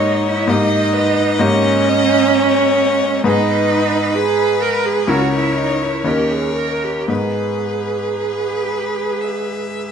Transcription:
Already playing: G#2 A#3 D#4 G4 C#5 D#5
0.28 E4
0.47 G#2 A#3 D#4 G4 D#5
0.94 B4
1.39 G#2 A#3 C#4 D#4 G4 C#5
1.89 D#5
2.36 C#5
3.24 G#2 B3 D#4 G#4 B4
4.15 G#4 B4
4.62 A#4
4.85 G#4
5.07 C#2 C#4 E4 F#4 A#4 C#5
5.34 E4
5.57 D#4
5.82 E4
6.04 D#2 C#4 D#4 G4 A#4 C#5
6.31 G#4
6.56 A#4
6.84 G4
7.08 G#2 B3 D#4 G#4 B4
8.16 B4
9.21 E5

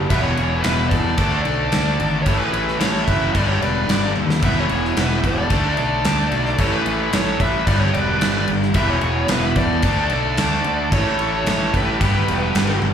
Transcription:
Already playing: G3
0.09 E1 E2 B2 E3 B4 E5, kick, crash
0.22 G#4 C#5
0.37 E1, crash
0.61 E4 B4, snare, crash
0.66 E1
0.88 E2 A4 D5, kick, crash
1.17 D2 D3 A3 D4, kick, crash
1.42 B1 A4 D5, crash
1.72 D2, snare, crash
1.99 G#1, crash
2.22 A1 A2 A4 C#5, crash
2.26 E3 A3, kick
2.37 G#4 B4
2.53 A1, crash
2.68 snare
2.78 A1 A4 C#5, snare, crash
3.05 F#1 B4 E5, kick, crash
3.33 G1 G2 D3 G3 B4 D5, kick, crash
3.47 G4 C#5
3.61 E1 B4 D5, crash
3.88 G1, snare, crash
4.16 D#2, high tom
4.30 snare
4.41 E1 E2 B2 E3 B4, kick, crash
4.45 E5
4.58 G#4 C#5
4.69 E1, crash
4.85 snare
4.97 E1 E4 B4, snare, crash
5.24 E1 A4 D5, kick, crash
5.49 D2 D3 A3 D4, kick, crash
5.77 B1 A4 D5, crash
6.04 D2, snare, crash
6.31 B1, crash
6.46 snare
6.57 A1 A2 E3 A3 A4 C#5, kick, crash
6.72 G#4 B4
6.85 A1, crash
7.13 A1 A4 C#5, snare, crash
7.40 A1 B4 E5, kick, crash
7.66 G1 G2 D3 G3 D5, kick, crash
7.71 B4
7.79 C#5
7.83 G4
7.93 E1 B4 D5, crash
8.21 G1, snare, crash
8.48 G1, crash
8.62 snare
8.74 E1 E2 B2 E3 E5, kick, crash
8.79 B4
8.90 G#4 C#5
9.01 E1, crash
9.28 E1 E4 B4, snare, crash
9.56 E2 D5, kick, crash
9.60 A4
9.82 D2 D3 A3 D4, kick, crash
10.10 B1 D5, crash
10.16 A4
10.37 D2, snare, crash
10.64 D2, crash
10.90 A1 A2 E3 A3 C#5, kick, crash
10.96 A4
11.19 A1, crash
11.46 A1 A4 C#5, snare, crash
11.73 A1 G4 B4, kick, crash
11.98 G1 G2 D3 G3, kick, crash
12.28 E1, crash
12.55 G1, snare, crash
12.82 G1, high tom

